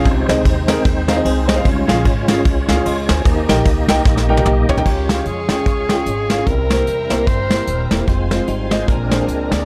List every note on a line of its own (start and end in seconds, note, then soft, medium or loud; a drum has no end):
0.00 0.27 F4 medium
0.00 0.27 C#5 medium
0.05 0.25 C2 loud
0.05 0.64 C3 medium
0.05 1.62 G#3 medium
0.05 1.62 C4 medium
0.05 1.62 D#4 medium
0.05 1.62 C5 medium
0.05 kick medium
0.05 ride medium
0.28 0.43 C#2 medium
0.28 0.40 C4 medium
0.28 0.40 D#4 medium
0.28 0.40 G#4 medium
0.28 0.41 D#5 medium
0.28 snare loud
0.28 ride medium
0.45 0.79 D#2 medium
0.45 kick medium
0.45 ride medium
0.68 0.80 C4 medium
0.68 0.80 D#4 medium
0.68 0.80 G#4 medium
0.68 0.80 A#4 loud
0.68 snare loud
0.68 ride medium
0.85 1.19 D#2 medium
0.85 kick loud
0.85 ride medium
1.08 1.14 C4 medium
1.08 1.14 D#4 medium
1.08 1.14 G#4 medium
1.08 1.24 A#4 medium
1.08 1.14 F5 medium
1.08 snare loud
1.08 ride medium
1.16 1.30 C4 medium
1.16 1.30 D#4 medium
1.16 1.30 G#4 medium
1.16 1.30 D#5 medium
1.25 1.59 C2 medium
1.25 1.48 C4 medium
1.25 1.48 G#4 medium
1.25 ride medium
1.48 1.87 G3 medium
1.48 1.54 C4 medium
1.48 1.54 D#4 medium
1.48 1.87 D#4 medium
1.48 1.54 G#4 medium
1.48 1.54 D#5 loud
1.48 snare loud
1.48 ride medium
1.56 1.65 C4 medium
1.56 1.65 D#4 medium
1.56 1.65 G#4 medium
1.56 1.65 F5 medium
1.65 1.85 C#2 loud
1.65 2.24 C#3 medium
1.65 3.22 G#3 medium
1.65 3.22 C#4 medium
1.65 3.22 F4 medium
1.65 1.71 C5 medium
1.65 kick loud
1.65 ride medium
1.70 3.25 C#5 medium
1.87 2.02 A#1 medium
1.87 2.00 C#4 medium
1.87 2.00 F4 medium
1.87 2.00 G#4 medium
1.87 2.00 F5 loud
1.87 snare loud
1.87 ride medium
2.05 2.39 G#1 medium
2.05 kick medium
2.05 ride medium
2.28 2.40 C#4 medium
2.28 2.40 F4 medium
2.28 2.40 G#4 medium
2.28 2.40 F5 medium
2.28 snare loud
2.28 ride medium
2.45 2.65 C2 medium
2.45 kick loud
2.45 ride medium
2.68 2.83 C#2 medium
2.68 2.74 C#4 medium
2.68 2.74 F4 medium
2.68 2.74 G#4 medium
2.68 2.74 F5 loud
2.68 snare loud
2.68 ride medium
2.76 2.90 C#4 medium
2.76 2.90 F4 medium
2.76 2.90 G#4 medium
2.76 2.85 F5 medium
2.85 3.05 C#2 medium
2.85 3.08 D#5 medium
2.85 3.08 C6 medium
2.85 ride medium
3.08 3.23 D2 medium
3.08 3.47 C5 medium
3.08 3.46 G#5 medium
3.08 snare loud
3.08 ride medium
3.25 3.45 D#2 loud
3.25 3.84 D#3 medium
3.25 4.83 A#3 medium
3.25 4.83 D#4 medium
3.25 4.83 G4 medium
3.25 4.83 D#5 medium
3.25 kick loud
3.25 ride medium
3.48 3.63 A#1 medium
3.48 3.60 D#4 medium
3.48 3.60 G4 medium
3.48 3.60 A#4 medium
3.48 3.60 G5 loud
3.48 snare loud
3.48 ride medium
3.65 3.85 C#2 medium
3.65 kick loud
3.65 ride medium
3.88 4.03 C2 medium
3.88 4.00 D#4 medium
3.88 4.00 G4 medium
3.88 4.01 A#4 medium
3.88 4.01 G5 loud
3.88 snare loud
3.88 ride medium
4.05 4.39 A#1 loud
4.05 kick loud
4.05 snare medium
4.17 snare medium
4.29 4.45 G3 medium
4.29 4.45 D#4 medium
4.29 4.35 D#4 medium
4.29 4.35 G4 medium
4.29 4.35 A#4 medium
4.29 4.35 G5 medium
4.37 4.51 D#4 medium
4.37 4.51 G4 medium
4.37 4.51 A#4 medium
4.37 4.51 G5 medium
4.37 high tom medium
4.46 4.66 B1 medium
4.46 4.69 A#3 medium
4.46 4.68 G4 medium
4.46 mid tom medium
4.69 4.83 C2 medium
4.69 5.08 C#4 medium
4.69 4.75 D#4 medium
4.69 4.75 G4 medium
4.69 5.07 A#4 medium
4.69 4.75 A#4 medium
4.69 4.75 C#5 medium
4.69 floor tom loud
4.77 4.85 D#4 medium
4.77 4.85 G4 medium
4.77 4.86 A#4 medium
4.77 4.86 G5 loud
4.77 floor tom medium
4.85 5.20 C#2 loud
4.85 5.45 C#3 medium
4.85 6.43 G#3 medium
4.85 6.44 C#4 medium
4.85 6.43 F4 soft
4.85 5.29 G4 medium
4.85 6.45 C#5 medium
4.85 6.44 C#5 medium
4.85 6.45 F5 medium
4.85 6.45 C#6 medium
4.85 kick medium
4.85 crash medium
5.09 5.21 C#4 medium
5.09 5.21 F4 medium
5.09 5.21 G#4 medium
5.09 5.21 F5 medium
5.09 snare medium
5.09 closed hi-hat medium
5.26 5.46 F2 medium
5.26 6.48 G#4 medium
5.26 closed hi-hat medium
5.49 5.63 D#2 medium
5.49 5.61 C#4 medium
5.49 5.61 F4 medium
5.49 5.61 G#4 medium
5.49 5.61 G5 medium
5.49 snare medium
5.49 closed hi-hat medium
5.66 6.00 C#2 medium
5.66 kick loud
5.66 closed hi-hat medium
5.89 6.02 C#4 medium
5.89 6.02 F4 medium
5.89 6.02 G#4 medium
5.89 6.02 G5 medium
5.89 snare loud
5.89 closed hi-hat medium
6.06 6.40 G#1 medium
6.06 closed hi-hat medium
6.30 6.42 C#4 medium
6.30 6.42 F4 medium
6.30 6.42 G#4 medium
6.30 6.42 F5 medium
6.30 snare loud
6.30 closed hi-hat medium
6.46 6.81 C2 medium
6.46 7.07 C3 medium
6.46 8.04 G3 medium
6.46 8.04 C4 soft
6.46 6.52 D#4 soft
6.46 8.04 A#4 medium
6.46 7.29 A#4 medium
6.46 8.86 C5 medium
6.46 8.06 E5 medium
6.46 8.06 G5 medium
6.46 8.06 A#5 medium
6.46 kick medium
6.46 closed hi-hat medium
6.51 8.07 E4 medium
6.70 6.82 A#3 medium
6.70 6.82 E4 medium
6.70 6.82 G4 medium
6.70 6.82 C5 medium
6.70 snare loud
6.70 closed hi-hat medium
6.87 7.07 E2 medium
6.87 closed hi-hat medium
7.10 7.25 C2 medium
7.10 7.22 A#3 medium
7.10 7.22 E4 medium
7.10 7.23 G4 medium
7.10 7.23 C5 medium
7.10 snare medium
7.10 closed hi-hat medium
7.27 7.61 G1 medium
7.27 7.91 C5 medium
7.27 kick loud
7.27 closed hi-hat medium
7.50 7.63 A#3 medium
7.50 7.63 E4 medium
7.50 7.63 G4 medium
7.50 7.63 C5 medium
7.50 snare medium
7.50 closed hi-hat medium
7.67 7.87 D#1 medium
7.67 closed hi-hat medium
7.91 8.05 E1 medium
7.91 8.03 A#3 medium
7.91 8.03 E4 medium
7.91 8.03 G4 medium
7.91 8.03 C5 medium
7.91 snare loud
7.91 closed hi-hat medium
8.07 8.42 F1 medium
8.07 8.87 G#3 medium
8.07 8.87 C4 medium
8.07 8.87 F4 medium
8.07 8.87 C5 medium
8.07 8.87 F5 medium
8.07 9.65 G#5 medium
8.07 8.87 C6 medium
8.07 kick medium
8.07 closed hi-hat medium
8.31 8.43 G#3 medium
8.31 8.43 C4 medium
8.31 8.43 F4 medium
8.31 8.43 C5 medium
8.31 snare medium
8.31 closed hi-hat medium
8.48 8.82 G#1 medium
8.48 8.71 G3 medium
8.48 8.70 D#4 medium
8.48 closed hi-hat medium
8.71 8.83 G#3 medium
8.71 8.88 G#3 medium
8.71 8.83 C4 medium
8.71 8.83 F4 medium
8.71 8.87 F4 medium
8.71 8.83 D#5 medium
8.71 snare medium
8.71 closed hi-hat medium
8.88 9.22 A#1 medium
8.88 9.48 A#2 medium
8.88 9.65 G#3 medium
8.88 9.65 C4 medium
8.88 9.65 D4 medium
8.88 9.49 D4 medium
8.88 9.65 A#4 medium
8.88 9.49 A#4 medium
8.88 9.65 C5 medium
8.88 9.65 D5 medium
8.88 9.65 A#5 medium
8.88 kick loud
8.88 closed hi-hat medium
9.11 9.23 A#3 medium
9.11 9.23 D4 medium
9.11 9.23 G#4 medium
9.11 9.23 C5 medium
9.11 snare loud
9.11 closed hi-hat medium
9.28 9.48 C#2 medium
9.28 closed hi-hat medium
9.51 9.65 D2 medium
9.51 9.63 A#3 medium
9.51 9.63 D4 medium
9.51 9.63 G#4 medium
9.51 9.63 D5 medium
9.51 snare loud
9.51 closed hi-hat medium